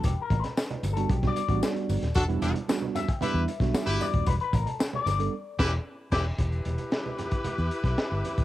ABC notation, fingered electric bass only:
X:1
M:4/4
L:1/16
Q:1/4=114
K:Em
V:1 name="Fingered electric bass" clef=bass
E,,, z A,,, z3 G,,,2 B,,,2 z A,,, z2 G,,, ^D,,, | E,,,2 E,,, z6 E,, z B,,, z G,,, z ^D,,, | E,,, z A,,, z3 G,,,2 z2 E,,,2 z2 E,,,2 | E,,,2 E,,, z6 E,, z B,,, z G,,, z ^D,,, |]